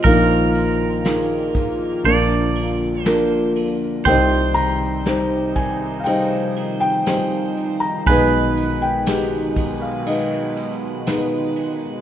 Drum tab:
RD |xxxxxxxx|xxxxxxxx|xxxxxxxx|
SD |--o---o-|--o---o-|--o---o-|
BD |o--o----|o--o----|o--o----|